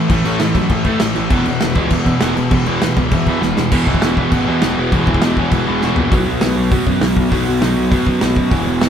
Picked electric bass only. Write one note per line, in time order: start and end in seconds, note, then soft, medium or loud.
0.10 0.21 A1 medium
0.25 0.36 A1 medium
0.40 0.51 A1 loud
0.55 0.66 F#2 medium
0.70 0.93 A2 medium
1.01 1.12 A1 medium
1.17 1.28 A1 medium
1.31 1.42 E1 medium
1.46 1.57 E1 medium
1.62 1.73 E1 medium
1.76 1.87 C#2 medium
1.91 2.13 E2 medium
2.22 2.33 E1 medium
2.37 2.48 E1 medium
2.51 2.62 E1 medium
2.67 2.78 E1 medium
2.82 2.93 E1 loud
2.97 3.08 C#2 medium
3.12 3.34 E2 loud
3.42 3.53 E1 loud
3.57 3.68 E1 loud
3.72 3.97 E1 loud
4.02 4.15 E1 loud
4.17 4.29 E1 medium
4.32 4.45 A1 medium
4.49 4.61 E2 medium
4.63 4.75 E1 medium
4.77 4.90 E1 medium
4.92 5.05 E1 loud
5.07 5.19 E1 loud
5.23 5.47 E1 loud
5.52 5.64 E1 loud
5.69 5.80 E1 loud
5.83 5.95 E1 medium
5.98 6.10 A#1 medium
6.12 6.24 B1 medium
6.27 6.39 B1 medium
6.42 6.54 B1 loud
6.57 6.69 B1 medium
6.72 6.84 B2 loud
6.87 6.99 F#2 medium
7.01 7.14 B1 loud
7.16 7.29 B1 medium
7.32 7.44 B1 medium
7.46 7.59 B1 medium
7.61 7.74 B1 loud
7.77 7.89 B1 medium
7.91 8.04 B2 loud
8.07 8.19 F#2 medium
8.23 8.35 B1 loud
8.37 8.49 F#2 medium
8.51 8.64 E1 loud
8.67 8.79 E1 loud
8.82 8.89 E1 loud